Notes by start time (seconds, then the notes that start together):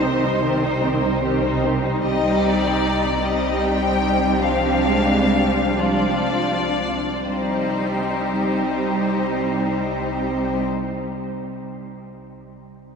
Already playing: C2 D#4 C5
0.04 D#3 C4 G4
0.23 G3 D#4 C5
0.43 D#3 C4 G4
0.62 G3 D#4 C5
0.83 D#3 C4 G4
1.03 G3 D#4 C5
1.22 D#3 C4 G4
1.43 G3 D#4 C5
1.64 D#3 C4 G4
1.83 G3 D#4 C5
2.03 C2 G3 C4 D#4 G4 D#5
2.43 D5
3.22 G3 C4 D#4 G4 D#5
3.62 G5
4.42 F3 D4 G4 F5
4.86 G#3
5.30 G3
5.77 F3 D4 F4 D5
7.27 C2 G3 C4 D#4 G4 C5